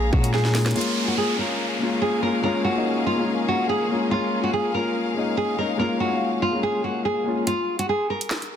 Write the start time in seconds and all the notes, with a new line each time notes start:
Already playing: A#1 G#3 A#3 C#4 F4 G#4 C#5 F5 A#5
0.10 A#2 G#3 A#3 C#4 F4 F#4, kick
0.15 G#4
0.24 closed hi-hat
0.34 G#4, snare
0.45 snare
0.53 G#3 A#3 C#4 F4, snare, open hi-hat
0.57 G#4
0.66 snare, closed hi-hat
0.71 G#3, closed hi-hat
0.75 A#3 C#4 F4 G#4 A#4 F5, closed hi-hat, downlifter
0.81 closed hi-hat
1.08 F#4
1.18 G#4
1.37 G#3 A#3 C#4 A#4
1.41 F4
1.79 G#3 A#3 C#4
1.83 F4
2.02 G#4
2.20 G#3 A#3 C#4 A#4
2.24 F4
2.41 G#3 A#3 C#4 A#4
2.46 F4
2.64 F#4
2.74 G#3 A#3 C#4
2.78 D#4
3.06 F4
3.16 G#3 A#3 C#4
3.20 F4
3.48 F#4
3.69 G#4
3.88 G#3 A#3 C#4
3.93 F4
4.09 G#3 A#3 C#4 F4 F5
4.13 F4
4.43 F#4
4.53 G#4
4.72 G#3 A#3 C#4 A#4
4.77 F4
5.14 G#3 A#3 C#4
5.18 D#4
5.37 G#4
5.56 G#3 A#3 C#4 A#4
5.61 D#4
5.77 G#3 A#3 C#4 A#4
5.81 F4
6.00 F#4
6.09 G#3 A#3 C#4
6.14 F5
6.42 F4
6.51 G#3 A#3 C#4
6.55 F4
6.63 G#4
6.84 F#4
7.05 G#4
7.24 G#3 A#3 C#4
7.28 F4
7.47 F4, closed hi-hat
7.79 F#4, closed hi-hat
7.89 G#4
8.10 A#4
8.21 closed hi-hat
8.31 snare, clap, closed hi-hat
8.42 closed hi-hat